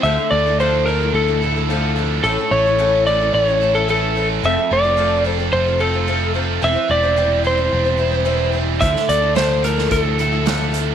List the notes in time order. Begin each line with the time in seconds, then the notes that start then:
0.03 D2 D3 F3 A3 D4 E4 A4 E5
0.17 A3 D4 E4 A4
0.30 D2 A3 D5
0.46 A3 D4 E4 A4
0.59 D3 F3 A3 D4 E4 A4 C5
0.86 F3 A3 D4 E4 A4 A#4
1.00 A3 D4 E4 A4
1.13 D2 A3 A4
1.28 A3 D4 E4 A4
1.41 A3 D4 E4 A4
1.56 A3 D4 E4 A4
1.69 D3 F3 A3 D4 E4 A4
1.96 F3 A3 D4 E4 A4
2.23 A1 A2 E3 A3 C#4 E4 A4
2.38 A3 C#4 E4 A4
2.51 A1 A3 C#5
2.66 A3 C#4 E4 A4
2.78 A2 E3 A3 C#4 E4 A4
3.06 E3 A3 C#4 E4 A4 D5
3.20 A3 C#4 E4 A4
3.32 A1 A3 D5
3.45 E4 A4 C#5
3.50 A3 C#4
3.60 A3 C#4 E4 A4
3.75 A3 C#4 E4 A4
3.88 A2 E3 A3 C#4 E4 A4
4.15 E3 A3 C#4 E4 A4
4.43 F1 F2 F3 A3 C4 F4 A4 E5
4.57 C4 F4 A4
4.71 F1 A3 D5
4.83 C4 F4 A4
4.97 F3 A3 C4 F4 A4
5.24 F3 A3 C4 F4 A4
5.39 C4 F4 A4
5.53 F1 A3 C5
5.66 C4 F4 A4
5.79 A3 C4 F4 A4
5.93 C4 F4 A4
6.07 F3 A3 C4 F4 A4
6.34 F3 A3 C4 F4 A4
6.62 E1 E3 G3 C4 E4 C5 E5
6.75 C4 E4 C5
6.88 E1 G3 D5
7.03 C4 E4 C5
7.16 E3 G3 C4 E4 C5
7.43 E3 G3 C4 E4 C5
7.57 C4 E4 C5
7.72 E1 G3
7.85 C4 E4 C5
7.97 G3 C4 E4 C5
8.12 C4 E4 C5
8.25 E3 G3 C4 E4 C5
8.52 E3 G3 C4 E4 C5
8.80 D2 D3 F3 A3 D4 E4 A4 E5, kick, closed hi-hat
8.94 A3 D4 E4 A4, snare
9.09 D2 A3 D5, closed hi-hat
9.21 A3 D4 E4 A4
9.35 D3 F3 A3 D4 E4 A4 C5, snare, closed hi-hat
9.62 F3 A3 D4 E4 A4 A#4, closed hi-hat
9.76 A3 D4 E4 A4, snare
9.91 D2 A3 A4, kick, closed hi-hat
10.03 A3 D4 E4 A4
10.18 A3 D4 E4 A4, closed hi-hat
10.32 A3 D4 E4 A4
10.45 D3 F3 A3 D4 E4 A4, snare, closed hi-hat
10.72 F3 A3 D4 E4 A4, closed hi-hat